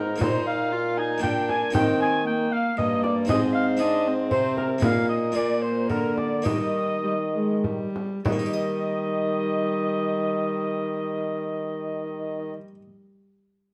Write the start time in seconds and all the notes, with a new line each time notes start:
Already playing: G#2 B3 D#4 G#4 A#4
0.16 A#3 D#4 F4
0.20 A#2 D#4 C5, frame drum
0.45 F5
0.73 F4
0.97 D#4 G#5
1.18 A#2 A#3 D4 F4 G5
1.22 A#2 D4 G5, frame drum
1.48 G#5, frame drum
1.71 D#3 A#3 D#4 G4 G5
1.75 D#3 C4, frame drum
1.99 G#5
2.25 A#3 G5
2.51 F5
2.77 G2 A#3 D#5, frame drum
3.03 D5, frame drum
3.25 C4 D#4 G#4 D#5, frame drum
3.29 G#2 C4 D#5
3.53 F5
3.77 C4 D#4 G#4 D#5
3.81 D4
4.08 C4
4.30 C3 C5, frame drum
4.56 A#4, frame drum
4.78 A#3 D#4 G#4, frame drum
4.83 A#2 A#3 F5
5.08 D#5
5.32 A#2 A#3 F4 G#4 D5
5.36 A#2 A#3 D5
5.62 C5
5.88 D3 A#4, frame drum
6.15 D5, frame drum
6.42 D#3 G3 A#3 D#4 G4 D#5, frame drum
7.03 G3
7.34 G#3
7.64 G3, frame drum
7.96 frame drum
8.25 D#3 G3 D#5, frame drum
8.32 A#3
8.39 D#4
8.46 G4
8.53 D#5